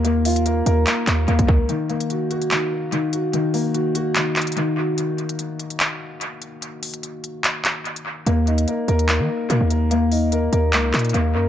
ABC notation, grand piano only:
X:1
M:4/4
L:1/8
Q:1/4=146
K:Ebm
V:1 name="Grand piano"
[B,B] F B B B,2 B, B | E, B, G G E,2 E, G | E, B, G G E,2 E, G | z8 |
z8 | B, E B B B,2 B, B | B, E B B B,2 B, B |]